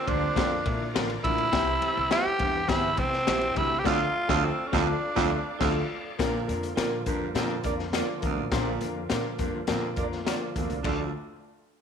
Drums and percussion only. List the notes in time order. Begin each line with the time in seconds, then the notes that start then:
0.08 kick, ride
0.36 kick, snare, ride
0.66 kick, ride
0.96 finger snap, snare, ride
1.10 ride
1.24 kick, ride
1.38 ride
1.53 kick, snare, ride
1.82 ride
2.11 finger snap, snare, ride
2.39 kick, ride
2.69 kick, snare, ride
2.97 kick, ride
3.13 snare
3.27 finger snap, snare, ride
3.41 ride
3.56 kick, ride
3.85 kick, snare, crash
4.29 kick, snare
4.73 kick, snare
5.17 kick, snare
5.60 kick, snare, crash
6.19 kick, snare, closed hi-hat
6.49 closed hi-hat
6.63 closed hi-hat
6.77 finger snap, snare, closed hi-hat
7.06 kick, closed hi-hat
7.35 snare, closed hi-hat
7.63 kick, closed hi-hat
7.79 snare
7.93 finger snap, snare, closed hi-hat
8.22 kick, closed hi-hat
8.51 kick, snare, closed hi-hat
8.81 closed hi-hat
9.10 finger snap, snare, closed hi-hat
9.39 kick, closed hi-hat
9.67 snare, closed hi-hat
9.96 kick, closed hi-hat
10.12 snare
10.27 finger snap, snare, closed hi-hat
10.56 kick, closed hi-hat
10.70 closed hi-hat
10.84 finger snap, kick, crash